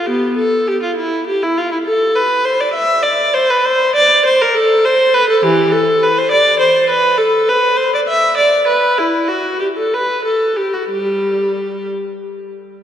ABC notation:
X:1
M:6/8
L:1/16
Q:3/8=67
K:C
V:1 name="Viola"
[B,G]2 A2 G F E2 G E F E | A2 B2 c d e2 d2 c B | c2 d2 c _B A2 c2 =B A | [K:G] [E,G]2 A2 B c d2 c2 B2 |
A2 B2 c d e2 d2 B2 | E2 F2 G A B2 A2 G F | [G,G]6 z6 |]